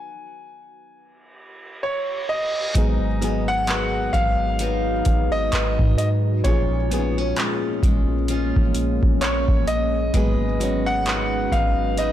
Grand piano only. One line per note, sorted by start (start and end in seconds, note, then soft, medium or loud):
0.00 1.79 G#5 medium
1.83 2.31 C#5 medium
2.29 3.44 D#5 medium
3.48 4.10 F#5 loud
4.13 5.29 F5 loud
5.32 5.94 D#5 loud
5.98 6.08 D#5 medium
6.44 7.33 C#5 medium
9.21 9.64 C#5 medium
9.68 10.90 D#5 loud
10.86 11.54 F#5 loud
11.52 12.00 F5 loud
11.98 12.12 D#5 loud